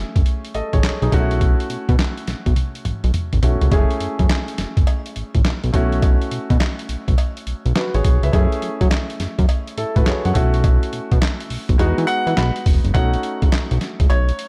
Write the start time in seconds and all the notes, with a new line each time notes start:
Already playing: A3 C#4 E4 G#4
0.16 F#1, kick, closed hi-hat
0.26 closed hi-hat
0.45 closed hi-hat
0.54 A1 A4 D#5, closed hi-hat
0.73 A1 G#4 C#5, kick, closed hi-hat
0.83 B1, snare, clap, closed hi-hat
1.02 B1 D#4 G#4, closed hi-hat
1.11 B1 A3 C#4 D#4 F#4, kick, closed hi-hat
1.19 E4
1.31 closed hi-hat
1.41 kick, closed hi-hat
1.60 closed hi-hat
1.70 B2, closed hi-hat
1.89 B2, kick, closed hi-hat
1.99 snare, clap, closed hi-hat
2.17 closed hi-hat
2.27 B1, snare, closed hi-hat
2.46 B1, kick, closed hi-hat
2.56 closed hi-hat, high tom
2.75 closed hi-hat
2.85 B1, closed hi-hat, mid tom
3.04 B1, closed hi-hat
3.14 closed hi-hat, mid tom
3.33 A1, closed hi-hat, mid tom
3.42 B1 A3 C#4 E4 F#4, closed hi-hat, floor tom
3.61 C#2, closed hi-hat, floor tom
3.71 F#1 G#3 C#4 E4 G#4, kick, closed hi-hat, cowbell
3.77 A3
3.91 closed hi-hat
4.00 F#2, closed hi-hat
4.19 F#2, kick, closed hi-hat
4.29 snare, clap, closed hi-hat, cowbell
4.48 closed hi-hat
4.58 F#1, snare, closed hi-hat
4.77 F#1, kick, closed hi-hat
4.87 closed hi-hat, cowbell
5.06 closed hi-hat
5.16 A1, closed hi-hat
5.35 A1, kick, closed hi-hat
5.45 B1, snare, clap, closed hi-hat, cowbell
5.64 B1, closed hi-hat
5.73 B1 A3 C#4 E4 F#4, kick, closed hi-hat
5.92 closed hi-hat
6.02 kick, closed hi-hat, cowbell
6.22 closed hi-hat
6.31 B2, closed hi-hat
6.50 B2, kick, closed hi-hat
6.60 snare, clap, closed hi-hat, cowbell
6.79 closed hi-hat
6.89 B1, closed hi-hat
7.08 B1, kick, closed hi-hat
7.18 closed hi-hat, cowbell
7.37 closed hi-hat
7.47 B1, closed hi-hat
7.65 B1, closed hi-hat
7.76 F#4 B4, snare, clap, closed hi-hat, cowbell
7.94 A1 G#4 C#5, closed hi-hat
8.05 B1, kick, closed hi-hat
8.23 C#2 B4 E5, closed hi-hat
8.32 F#2 A3 C#4 E4 G#4, kick, closed hi-hat, cowbell
8.52 closed hi-hat
8.62 F#3, closed hi-hat
8.81 F#3, kick, closed hi-hat
8.91 snare, clap, closed hi-hat, cowbell
9.10 closed hi-hat
9.20 F#2, snare, closed hi-hat
9.39 F#2, kick, closed hi-hat
9.49 closed hi-hat, cowbell
9.67 closed hi-hat
9.77 A2 E4 A4, closed hi-hat
9.96 A2 F#4 B4, kick, closed hi-hat
10.06 F#2 G#4 C#5, snare, clap, closed hi-hat, cowbell
10.25 F#2 C#5 F#5, closed hi-hat
10.34 B1 A3 C#4 E4 F#4, kick, closed hi-hat
10.54 closed hi-hat
10.64 kick, closed hi-hat, cowbell
10.83 closed hi-hat
10.93 B2, closed hi-hat
11.12 B2, kick, closed hi-hat
11.22 snare, clap, closed hi-hat, cowbell
11.40 closed hi-hat
11.50 B1, open hi-hat
11.69 B1, kick, closed hi-hat
11.78 E2 G#3 B3 D#4 F#4, closed hi-hat, cowbell
11.98 E3, closed hi-hat
12.07 F#5, closed hi-hat
12.27 E3, closed hi-hat
12.37 B1 B5, snare, clap, closed hi-hat, cowbell
12.56 closed hi-hat
12.66 E1, kick, open hi-hat
12.85 F#1, closed hi-hat
12.94 B1 A3 C#4 D#4 F#4 F#5, kick, closed hi-hat, cowbell
13.14 closed hi-hat
13.23 closed hi-hat
13.42 C#2, kick, closed hi-hat
13.52 B1, snare, clap, closed hi-hat, cowbell
13.71 B1, closed hi-hat
13.81 snare, closed hi-hat
14.00 C#2, kick, closed hi-hat
14.10 B1 C#5, closed hi-hat, cowbell
14.29 closed hi-hat
14.39 closed hi-hat